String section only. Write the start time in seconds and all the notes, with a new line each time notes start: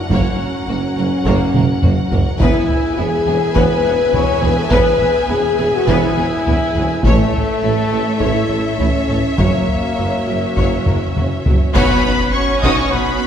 Already playing: C#4 F#4 A#4 F#5
2.40 B3 G#4 B4 E5
7.04 A3 A4 C#5 E5
9.37 C#4 F#4
11.75 C#4 F#4 C#5 F#5